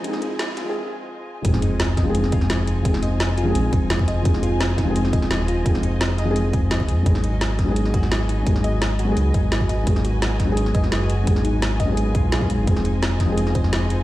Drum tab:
HH |x-x-x-x---------|x-x-x-x-x-x-x-x-|x-x-x-x-x-x-x-x-|x-x-x-x-x-x-x-x-|
SD |-o--o-o---------|-o--o-o--o-oo---|-o--o-------o---|-o--o-o--o-oo---|
BD |----------------|o-----o---o-----|o---------o--o--|o-----o---o-----|

HH |x-x-x-x-x-x-x-x-|x-x-x-x-x-x-x-x-|x-x-x-x-x-x-x-x-|x-x-x-x-x-x-x-x-|
SD |-o--o-------o---|-o--o-o--o-oo---|-o--o-------o---|-o--o-o--o-oo---|
BD |o---------o--o--|o-----o---o-----|o---------o--o--|o-----o---o-----|

HH |x-x-x-x-x-x-x-x-|x-x-x-x-x-x-x-x-|
SD |-o--o-------o---|-o--o-o--o-oo---|
BD |o-----o---o--o--|o-----o---o-----|